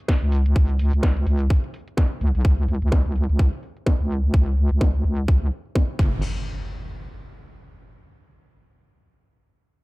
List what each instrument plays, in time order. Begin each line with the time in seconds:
0.08 kick, snare
0.22 wobble bass C#2
0.32 open hi-hat
0.46 closed hi-hat
0.56 wobble bass C#2, kick
0.70 closed hi-hat
0.79 open hi-hat
0.93 wobble bass C#2, closed hi-hat
1.03 kick, snare
1.17 closed hi-hat
1.27 wobble bass C#2, open hi-hat
1.40 closed hi-hat
1.50 kick
1.64 closed hi-hat
1.74 open hi-hat
1.88 closed hi-hat
1.97 kick, snare
2.21 wobble bass C#2, open hi-hat
2.35 wobble bass B1, open hi-hat
2.45 kick
2.68 wobble bass C#2, open hi-hat
2.82 wobble bass C#2, closed hi-hat
2.92 kick, snare
3.06 wobble bass C#2, closed hi-hat
3.16 open hi-hat
3.29 wobble bass C#2, closed hi-hat
3.39 kick
3.53 closed hi-hat
3.63 open hi-hat
3.77 closed hi-hat
3.86 kick, snare
4.00 wobble bass C#2
4.10 open hi-hat
4.24 closed hi-hat
4.34 wobble bass C#2, kick
4.57 open hi-hat
4.71 wobble bass C#2, closed hi-hat
4.81 kick, snare
5.05 wobble bass C#2, open hi-hat
5.28 wobble bass C#2, kick
5.42 closed hi-hat
5.52 open hi-hat
5.66 closed hi-hat
5.75 kick, snare
5.99 wobble bass F#1, kick, impact